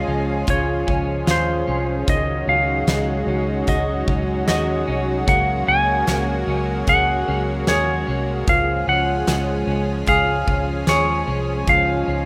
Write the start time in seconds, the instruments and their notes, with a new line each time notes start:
Already playing: analog synth pad F3 G#3 C#4 F4 G#4, clean electric guitar G#3 F4, electric slide guitar D#5
0.07 fingered electric bass C#2, clean electric guitar C#4
0.47 fingered electric bass C#2, clean electric guitar F4, electric slide guitar C#5, kick, closed hi-hat
0.87 fingered electric bass C#2, clean electric guitar C#4, kick
1.27 fingered electric bass D#2, clean electric guitar F4, electric slide guitar C5, snare, closed hi-hat, tambourine
1.67 fingered electric bass C2, clean electric guitar C#4
2.07 fingered electric bass C#2, clean electric guitar D#3, analog synth pad F#3 D#4 F#4, electric slide guitar D#5, kick, closed hi-hat
2.47 fingered electric bass C#2, clean electric guitar C#4, electric slide guitar F5
2.87 fingered electric bass C#2, clean electric guitar G#3, snare, closed hi-hat, tambourine
3.27 fingered electric bass C#2, clean electric guitar C#4
3.67 fingered electric bass C#2, clean electric guitar F#4, electric slide guitar D#5, kick, closed hi-hat
4.08 fingered electric bass C#2, clean electric guitar C#4, kick
4.48 fingered electric bass D#2, clean electric guitar F#4, electric slide guitar D#5, snare, closed hi-hat, tambourine
4.87 fingered electric bass C2, clean electric guitar C#4
5.27 fingered electric bass C#2, clean electric guitar A#3, analog synth pad A#3, electric slide guitar F#5, kick, closed hi-hat
5.67 fingered electric bass C#2, clean electric guitar C#4, electric slide guitar G#5
6.07 fingered electric bass C#2, clean electric guitar A#3, snare, closed hi-hat, tambourine
6.47 fingered electric bass C#2, clean electric guitar C#4
6.87 fingered electric bass C#2, clean electric guitar G#4, electric slide guitar F#5, kick, closed hi-hat
7.28 fingered electric bass C#2, clean electric guitar C#4
7.67 fingered electric bass D#2, clean electric guitar G#4, electric slide guitar C#5, snare, closed hi-hat, tambourine
8.07 fingered electric bass C2, clean electric guitar C#4
8.47 fingered electric bass C#2, clean electric guitar F3, analog synth pad F3 C#4 G#4, electric slide guitar F5, kick, closed hi-hat
8.87 fingered electric bass C#2, clean electric guitar C#4, electric slide guitar F#5
9.27 fingered electric bass C#2, clean electric guitar G#3, snare, closed hi-hat, tambourine
9.67 fingered electric bass C#2, clean electric guitar C#4
10.07 fingered electric bass C#2, clean electric guitar G#4, electric slide guitar F5, kick, closed hi-hat
10.48 fingered electric bass C#2, clean electric guitar C#4, kick
10.87 fingered electric bass D#2, clean electric guitar G#4, electric slide guitar C#5, snare, closed hi-hat, tambourine
11.27 fingered electric bass C2, clean electric guitar C#4
11.67 fingered electric bass C#2, clean electric guitar F3, analog synth pad D#4, electric slide guitar F5, kick, closed hi-hat
12.07 fingered electric bass C#2, clean electric guitar C#4